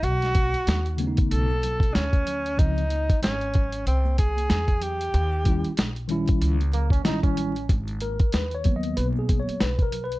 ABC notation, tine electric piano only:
X:1
M:4/4
L:1/8
Q:"Swing 16ths" 1/4=94
K:G#m
V:1 name="Tine electric piano"
z3 [C,=A,B,CD] z4 | [C,^E,^B,D] z6 z | z [D,=G,CE] z [D,G,CE] z2 [D,G,CE] z | z A (3B c d (3B G c (3B A B |]
V:2 name="Tine electric piano"
z8 | z8 | z8 | z3 [F,A,B,]3 z2 |]